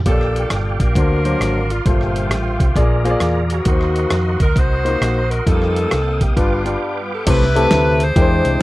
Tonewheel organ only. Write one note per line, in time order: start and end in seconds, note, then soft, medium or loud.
0.06 0.95 G4 medium
0.06 0.95 D5 medium
0.06 0.95 F5 medium
0.06 0.95 G5 medium
0.96 1.85 A#4 medium
0.96 1.85 D5 medium
0.96 1.85 F5 medium
0.96 1.85 C6 medium
1.86 2.75 G4 medium
1.86 2.76 C5 medium
1.86 3.65 F5 medium
1.86 2.76 G5 medium
2.76 3.65 G#4 medium
2.76 3.65 D5 medium
2.76 3.66 A#5 medium
3.65 5.45 A#4 medium
3.65 5.45 D#5 medium
3.65 5.44 F#5 medium
3.65 5.45 C6 medium
5.47 6.36 A#3 medium
5.47 7.25 F5 medium
5.47 6.35 G5 medium
5.47 6.36 D#6 medium
6.37 7.26 B4 medium
6.37 7.26 G5 medium
6.37 7.26 D6 medium